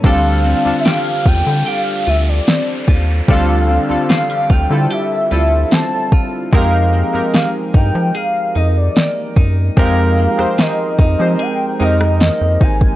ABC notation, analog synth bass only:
X:1
M:4/4
L:1/16
Q:1/4=74
K:Dphr
V:1 name="Analog synth bass" clef=bass
D,,3 =E,, z2 E,, D, z2 D,,2 z2 _E,,2 | D,,3 D,, z2 D,, D, z2 D,,2 z4 | F,,3 G,, z2 G,, F, z2 F,,2 z2 ^F,,2 | F,,3 F,, z2 F,, F, z2 F,,3 F,, _A,,,2 |]